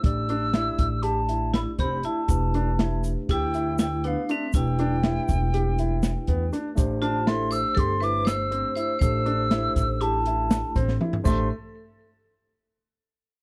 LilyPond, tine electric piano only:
\new Staff \with { instrumentName = "Tine electric piano" } { \time 9/8 \key a \minor \tempo 4. = 80 <a d' g' d''>1~ <a d' g' d''>8 | <a d' g' b'>1~ <a d' g' b'>8 | <a d' g' b'>1~ <a d' g' b'>8 | <a d' g' c''>1~ <a d' g' c''>8 |
<a d' g' a'>1~ <a d' g' a'>8 | <a d' g' c''>8 r1 | }